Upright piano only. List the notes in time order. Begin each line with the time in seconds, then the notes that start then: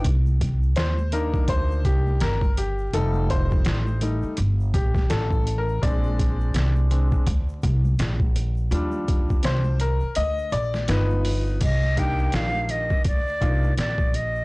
0.76 C5
1.13 A#3 D4 D#4 A#4
1.49 C5
1.85 G4
2.21 A#4
2.58 G4
2.93 G3 A3 D#4 A4
3.30 C5
4.02 G3 A3 D#4
4.74 G4
5.10 A4
5.58 A#4
5.81 G#3 C4 D4 D5
6.91 G#3 C4 D4
8.71 F3 G3 D4
9.45 C5
9.81 A#4
10.16 D#5
10.52 D5
10.88 F3 B3 D#4 B4
11.96 A#3 D4 D#4 G4
13.41 A#3 D4 D#4 F4